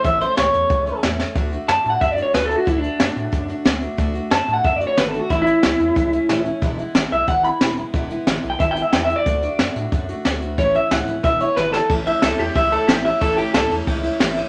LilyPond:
<<
  \new Staff \with { instrumentName = "Clean electric guitar" } { \time 4/4 \key a \major \tempo 4 = 182 e''8 c''8 cis''2 r4 | r4 \tuplet 3/2 { a''4 fis''8 e''8 d''8 cis''8 b'8 a'8 fis'8 } | \tuplet 3/2 { e'8 d'4~ } d'2~ d'8 r8 | r4 \tuplet 3/2 { a''4 fis''8 e''8 d''8 cis''8 b'8 a'8 fis'8 } |
\tuplet 3/2 { e'8 e'4~ } e'2~ e'8 r8 | r4. e''8 fis''8 b''4 r8 | r4 \tuplet 3/2 { r4 g''8 e''8 g''8 e''8 g''8 e''8 d''8~ } | d''4. r2 r8 |
cis''8 e''8 fis''4 e''8 cis''8 b'8 a'8 | r8 e''8 a'8 g'8 e''8 a'8 g'8 e''8 | a'8 g'8 a'8 r2 r8 | }
  \new Staff \with { instrumentName = "Steel-string acoustic guitar" } { \time 4/4 \key a \major <a, e a cis' a'>8 <a cis' a'>8 <a, e a cis' a'>8 <a cis' a'>8 <e a cis' a'>8 <a cis' a'>8 <a, e a cis' a'>8 <a cis' a'>8 | <d a d' fis'>8 <a d' fis'>8 <d a d' fis'>8 <a d' fis'>8 <d a d' fis'>8 <a d' fis'>8 <d a d' fis'>8 <a d' fis'>8 | <d a d' fis'>8 <a d' fis'>8 <d a d' fis'>8 <a d' fis'>8 <d a d' fis'>8 <a d' fis'>8 <d a d' fis'>8 <a d' fis'>8 | <d a d' fis'>8 <a d' fis'>8 <d a d' fis'>8 <a d' fis'>8 <d a d' fis'>8 <a d' fis'>8 <d a d' fis'>8 <a d' fis'>8 |
<a, e a cis' e'>8 <a cis' e'>8 <a, e a cis' e'>8 <a cis' e'>8 <e a cis' e'>8 <a cis' e'>8 <a, e a cis' e'>8 <a cis' e'>8 | <e, b, e gis b e'>8 <e gis b e'>8 <e, b, e gis b e'>8 <e gis b e'>8 <e gis b e'>8 <e gis b e'>8 <e, b, e gis b e'>8 <e gis b e'>8 | <e, b, e gis b e'>8 <e gis b e'>8 <e, b, e gis b e'>8 <e gis b e'>8 <e gis b e'>8 <e gis b e'>8 <e, b, e gis b e'>8 <e gis b e'>8 | <d a d' fis'>8 <a d' fis'>8 <d a d' fis'>8 <a d' fis'>8 <d a d' fis'>8 <a d' fis'>8 <d a d' fis'>8 <a d' fis'>8 |
<a, e a cis' e'>8 <a cis' e'>8 <a, e a cis' e'>8 <a cis' e'>8 <e gis b e'>8 <e gis b e'>8 <e, b, e gis b e'>8 <e gis b e'>8 | <a, e a cis' e'>8 <a cis' e'>8 <a, e a cis' e'>8 <a cis' e'>8 <e a cis' e'>8 <a cis' e'>8 <a, e a cis' e'>8 <a cis' e'>8 | <a, e a cis' e'>8 <a cis' e'>8 <a, e a cis' e'>8 <a cis' e'>8 <e a cis' e'>8 <a cis' e'>8 <a, e a cis' e'>8 <a cis' e'>8 | }
  \new Staff \with { instrumentName = "Analog synth bass" } { \clef bass \time 4/4 \key a \major a,,4 cis,8 e,8 cis,4 e,4 | d,4 fis,8 a,8 fis,4 d,4 | d,4 fis,8 a,8 fis,4 d,4 | d,4 fis,8 a,8 fis,4 gis,,4 |
a,,4 cis,8 e,8 cis,4 dis,,4 | e,,4 gis,,8 b,,8 gis,,4 e,,4 | e,,4 gis,,8 b,,8 gis,,4 e,4 | d,4 fis,8 a,8 fis,4 d,4 |
a,,4 cis,8 d,,8 e,,4 gis,,4 | a,,4 cis,8 e,8 cis,4 a,,4 | a,,4 cis,8 e,8 cis,4 a,,4 | }
  \new DrumStaff \with { instrumentName = "Drums" } \drummode { \time 4/4 <hh bd>8 hh8 <hh sn>8 hh8 <hh bd>8 hh8 <hh sn>8 sn8 | <hh bd>8 hh8 <hh sn>8 hh8 <hh bd>8 hh8 <hh sn>8 hh8 | <hh bd>8 hh8 <hh sn>8 hh8 <hh bd>8 hh8 <hh sn>8 hh8 | <hh bd>8 hh8 <hh sn>8 hh8 <hh bd>8 hh8 <hh sn>8 hh8 |
<hh bd>8 hh8 <hh sn>8 hh8 <hh bd>8 hh8 <hh sn>8 hh8 | <hh bd>8 hh8 <hh sn>8 hh8 <hh bd>8 hh8 <hh sn>8 hh8 | <hh bd>8 hh8 <hh sn>8 hh8 <hh bd>8 hh8 <hh sn>8 hh8 | <hh bd>8 hh8 <hh sn>8 hh8 <hh bd>8 hh8 <hh sn>8 hh8 |
<hh bd>8 hh8 <hh sn>8 hh8 <hh bd>8 hh8 sn8 sn8 | <bd cymr>8 cymr8 <cymr sn>8 cymr8 <bd cymr>8 cymr8 <cymr sn>8 cymr8 | <bd cymr>8 cymr8 <cymr sn>8 cymr8 <bd cymr>8 cymr8 <cymr sn>8 cymr8 | }
>>